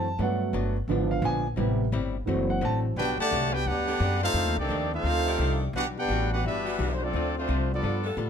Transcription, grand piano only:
0, 0, Header, 1, 2, 480
1, 0, Start_track
1, 0, Key_signature, 1, "major"
1, 0, Tempo, 347625
1, 257, Time_signature, 4, 2, 24, 8
1, 11458, End_track
2, 0, Start_track
2, 0, Title_t, "Grand piano"
2, 0, Program_c, 0, 0
2, 0, Note_on_c, 0, 81, 96
2, 243, Note_off_c, 0, 81, 0
2, 264, Note_on_c, 0, 54, 50
2, 274, Note_on_c, 0, 57, 48
2, 282, Note_on_c, 0, 59, 58
2, 306, Note_on_c, 0, 78, 76
2, 1005, Note_off_c, 0, 54, 0
2, 1009, Note_off_c, 0, 57, 0
2, 1011, Note_off_c, 0, 78, 0
2, 1014, Note_off_c, 0, 59, 0
2, 1225, Note_on_c, 0, 50, 57
2, 1235, Note_on_c, 0, 53, 54
2, 1241, Note_on_c, 0, 59, 60
2, 1533, Note_on_c, 0, 77, 83
2, 1698, Note_off_c, 0, 77, 0
2, 1730, Note_on_c, 0, 80, 97
2, 1965, Note_off_c, 0, 50, 0
2, 1970, Note_off_c, 0, 53, 0
2, 1973, Note_off_c, 0, 59, 0
2, 2008, Note_off_c, 0, 80, 0
2, 2168, Note_on_c, 0, 48, 54
2, 2168, Note_on_c, 0, 55, 52
2, 2181, Note_on_c, 0, 59, 55
2, 2527, Note_off_c, 0, 48, 0
2, 2527, Note_off_c, 0, 55, 0
2, 2534, Note_off_c, 0, 59, 0
2, 3118, Note_on_c, 0, 52, 58
2, 3130, Note_on_c, 0, 54, 50
2, 3141, Note_on_c, 0, 60, 65
2, 3452, Note_on_c, 0, 78, 83
2, 3617, Note_off_c, 0, 78, 0
2, 3657, Note_on_c, 0, 81, 89
2, 3827, Note_off_c, 0, 81, 0
2, 4038, Note_off_c, 0, 52, 0
2, 4045, Note_off_c, 0, 54, 0
2, 4051, Note_off_c, 0, 60, 0
2, 11458, End_track
0, 0, End_of_file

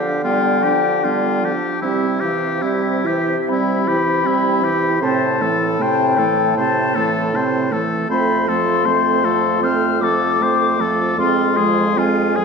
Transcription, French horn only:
0, 0, Header, 1, 2, 480
1, 0, Start_track
1, 0, Key_signature, 0, "major"
1, 0, Tempo, 798935
1, 1096, Time_signature, 4, 2, 24, 8
1, 1575, Tempo, 862069
1, 2055, Tempo, 767263
1, 5895, Tempo, 784314
1, 7625, End_track
2, 0, Start_track
2, 0, Title_t, "French horn"
2, 0, Program_c, 0, 60
2, 0, Note_on_c, 0, 53, 29
2, 138, Note_off_c, 0, 53, 0
2, 141, Note_on_c, 0, 55, 37
2, 383, Note_on_c, 0, 53, 31
2, 392, Note_off_c, 0, 55, 0
2, 628, Note_on_c, 0, 55, 33
2, 637, Note_off_c, 0, 53, 0
2, 860, Note_on_c, 0, 53, 34
2, 869, Note_off_c, 0, 55, 0
2, 1090, Note_off_c, 0, 53, 0
2, 1093, Note_on_c, 0, 55, 36
2, 1331, Note_on_c, 0, 52, 36
2, 1340, Note_off_c, 0, 55, 0
2, 1574, Note_on_c, 0, 55, 37
2, 1583, Note_off_c, 0, 52, 0
2, 1811, Note_on_c, 0, 52, 34
2, 1819, Note_off_c, 0, 55, 0
2, 1983, Note_off_c, 0, 52, 0
2, 2055, Note_on_c, 0, 55, 42
2, 2299, Note_on_c, 0, 52, 35
2, 2308, Note_off_c, 0, 55, 0
2, 2538, Note_on_c, 0, 55, 36
2, 2548, Note_off_c, 0, 52, 0
2, 2774, Note_on_c, 0, 52, 40
2, 2783, Note_off_c, 0, 55, 0
2, 3011, Note_off_c, 0, 52, 0
2, 3015, Note_on_c, 0, 48, 44
2, 3261, Note_on_c, 0, 52, 40
2, 3270, Note_off_c, 0, 48, 0
2, 3502, Note_on_c, 0, 48, 44
2, 3511, Note_off_c, 0, 52, 0
2, 3742, Note_on_c, 0, 52, 38
2, 3751, Note_off_c, 0, 48, 0
2, 3980, Note_off_c, 0, 52, 0
2, 3984, Note_on_c, 0, 48, 42
2, 4236, Note_on_c, 0, 52, 36
2, 4246, Note_off_c, 0, 48, 0
2, 4474, Note_on_c, 0, 48, 38
2, 4484, Note_off_c, 0, 52, 0
2, 4706, Note_on_c, 0, 52, 43
2, 4715, Note_off_c, 0, 48, 0
2, 4937, Note_off_c, 0, 52, 0
2, 4941, Note_on_c, 0, 57, 46
2, 5182, Note_on_c, 0, 53, 41
2, 5191, Note_off_c, 0, 57, 0
2, 5424, Note_on_c, 0, 57, 44
2, 5434, Note_off_c, 0, 53, 0
2, 5653, Note_on_c, 0, 53, 38
2, 5662, Note_off_c, 0, 57, 0
2, 5893, Note_off_c, 0, 53, 0
2, 5897, Note_on_c, 0, 57, 39
2, 6133, Note_on_c, 0, 53, 33
2, 6142, Note_off_c, 0, 57, 0
2, 6375, Note_on_c, 0, 57, 36
2, 6384, Note_off_c, 0, 53, 0
2, 6613, Note_on_c, 0, 53, 42
2, 6622, Note_off_c, 0, 57, 0
2, 6846, Note_off_c, 0, 53, 0
2, 6850, Note_on_c, 0, 56, 42
2, 7096, Note_on_c, 0, 53, 43
2, 7106, Note_off_c, 0, 56, 0
2, 7337, Note_on_c, 0, 56, 41
2, 7346, Note_off_c, 0, 53, 0
2, 7582, Note_on_c, 0, 53, 37
2, 7591, Note_off_c, 0, 56, 0
2, 7625, Note_off_c, 0, 53, 0
2, 7625, End_track
0, 0, End_of_file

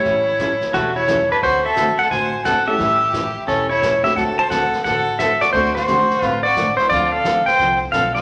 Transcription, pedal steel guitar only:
0, 0, Header, 1, 2, 480
1, 0, Start_track
1, 0, Tempo, 342661
1, 67, Time_signature, 4, 2, 24, 8
1, 11508, End_track
2, 0, Start_track
2, 0, Title_t, "Pedal steel guitar"
2, 0, Program_c, 0, 26
2, 0, Note_on_c, 0, 73, 94
2, 1039, Note_on_c, 0, 66, 92
2, 1058, Note_off_c, 0, 73, 0
2, 1347, Note_on_c, 0, 73, 100
2, 1354, Note_off_c, 0, 66, 0
2, 1838, Note_off_c, 0, 73, 0
2, 1848, Note_on_c, 0, 71, 83
2, 2003, Note_off_c, 0, 71, 0
2, 2008, Note_on_c, 0, 72, 98
2, 2319, Note_off_c, 0, 72, 0
2, 2323, Note_on_c, 0, 76, 97
2, 2786, Note_on_c, 0, 78, 90
2, 2807, Note_off_c, 0, 76, 0
2, 2942, Note_off_c, 0, 78, 0
2, 2958, Note_on_c, 0, 80, 102
2, 3430, Note_off_c, 0, 80, 0
2, 3436, Note_on_c, 0, 78, 98
2, 3747, Note_on_c, 0, 76, 107
2, 3754, Note_off_c, 0, 78, 0
2, 4877, Note_on_c, 0, 69, 91
2, 4909, Note_off_c, 0, 76, 0
2, 5175, Note_on_c, 0, 73, 92
2, 5195, Note_off_c, 0, 69, 0
2, 5625, Note_off_c, 0, 73, 0
2, 5659, Note_on_c, 0, 76, 93
2, 5825, Note_off_c, 0, 76, 0
2, 5831, Note_on_c, 0, 78, 107
2, 5915, Note_off_c, 0, 78, 0
2, 6149, Note_on_c, 0, 81, 101
2, 6301, Note_off_c, 0, 81, 0
2, 6307, Note_on_c, 0, 78, 100
2, 6769, Note_off_c, 0, 78, 0
2, 6785, Note_on_c, 0, 78, 98
2, 7235, Note_off_c, 0, 78, 0
2, 7269, Note_on_c, 0, 76, 96
2, 7582, Note_on_c, 0, 74, 95
2, 7590, Note_off_c, 0, 76, 0
2, 7736, Note_off_c, 0, 74, 0
2, 7741, Note_on_c, 0, 72, 93
2, 8035, Note_off_c, 0, 72, 0
2, 8052, Note_on_c, 0, 72, 98
2, 8752, Note_off_c, 0, 72, 0
2, 8752, Note_on_c, 0, 71, 98
2, 9003, Note_off_c, 0, 71, 0
2, 9009, Note_on_c, 0, 74, 104
2, 9476, Note_off_c, 0, 74, 0
2, 9482, Note_on_c, 0, 72, 92
2, 9647, Note_off_c, 0, 72, 0
2, 9659, Note_on_c, 0, 74, 109
2, 9975, Note_on_c, 0, 77, 93
2, 9984, Note_off_c, 0, 74, 0
2, 10452, Note_on_c, 0, 79, 95
2, 10471, Note_off_c, 0, 77, 0
2, 10901, Note_off_c, 0, 79, 0
2, 11094, Note_on_c, 0, 77, 99
2, 11389, Note_off_c, 0, 77, 0
2, 11411, Note_on_c, 0, 76, 97
2, 11508, Note_off_c, 0, 76, 0
2, 11508, End_track
0, 0, End_of_file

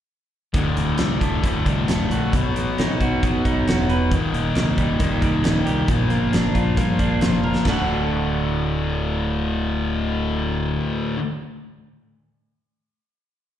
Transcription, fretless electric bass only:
0, 0, Header, 1, 2, 480
1, 0, Start_track
1, 0, Tempo, 444774
1, 591, Time_signature, 4, 2, 24, 8
1, 14672, End_track
2, 0, Start_track
2, 0, Title_t, "Fretless electric bass"
2, 0, Program_c, 0, 35
2, 584, Note_on_c, 0, 26, 79
2, 768, Note_off_c, 0, 26, 0
2, 819, Note_on_c, 0, 26, 73
2, 1005, Note_off_c, 0, 26, 0
2, 1068, Note_on_c, 0, 36, 74
2, 1252, Note_off_c, 0, 36, 0
2, 1306, Note_on_c, 0, 26, 66
2, 1491, Note_off_c, 0, 26, 0
2, 1552, Note_on_c, 0, 26, 73
2, 1735, Note_off_c, 0, 26, 0
2, 1789, Note_on_c, 0, 36, 74
2, 1974, Note_off_c, 0, 36, 0
2, 2035, Note_on_c, 0, 26, 71
2, 2218, Note_off_c, 0, 26, 0
2, 2274, Note_on_c, 0, 34, 79
2, 2457, Note_off_c, 0, 34, 0
2, 2516, Note_on_c, 0, 35, 74
2, 2698, Note_off_c, 0, 35, 0
2, 2775, Note_on_c, 0, 33, 74
2, 2950, Note_off_c, 0, 33, 0
2, 3010, Note_on_c, 0, 33, 78
2, 3188, Note_off_c, 0, 33, 0
2, 3245, Note_on_c, 0, 35, 72
2, 3425, Note_off_c, 0, 35, 0
2, 3486, Note_on_c, 0, 33, 79
2, 3665, Note_off_c, 0, 33, 0
2, 3726, Note_on_c, 0, 35, 75
2, 3906, Note_off_c, 0, 35, 0
2, 3964, Note_on_c, 0, 28, 71
2, 4437, Note_off_c, 0, 28, 0
2, 4437, Note_on_c, 0, 27, 84
2, 4619, Note_off_c, 0, 27, 0
2, 4682, Note_on_c, 0, 27, 74
2, 4862, Note_off_c, 0, 27, 0
2, 4919, Note_on_c, 0, 36, 82
2, 5100, Note_off_c, 0, 36, 0
2, 5157, Note_on_c, 0, 27, 77
2, 5338, Note_off_c, 0, 27, 0
2, 5399, Note_on_c, 0, 27, 74
2, 5579, Note_off_c, 0, 27, 0
2, 5636, Note_on_c, 0, 36, 75
2, 5817, Note_off_c, 0, 36, 0
2, 5888, Note_on_c, 0, 27, 73
2, 6064, Note_off_c, 0, 27, 0
2, 6129, Note_on_c, 0, 36, 73
2, 6304, Note_off_c, 0, 36, 0
2, 6348, Note_on_c, 0, 34, 79
2, 6530, Note_off_c, 0, 34, 0
2, 6602, Note_on_c, 0, 31, 72
2, 6779, Note_off_c, 0, 31, 0
2, 6837, Note_on_c, 0, 31, 82
2, 7015, Note_off_c, 0, 31, 0
2, 7066, Note_on_c, 0, 34, 68
2, 7248, Note_off_c, 0, 34, 0
2, 7315, Note_on_c, 0, 43, 71
2, 7493, Note_off_c, 0, 43, 0
2, 7547, Note_on_c, 0, 34, 71
2, 7728, Note_off_c, 0, 34, 0
2, 7800, Note_on_c, 0, 29, 68
2, 8155, Note_off_c, 0, 29, 0
2, 8262, Note_on_c, 0, 26, 75
2, 11630, Note_off_c, 0, 26, 0
2, 14672, End_track
0, 0, End_of_file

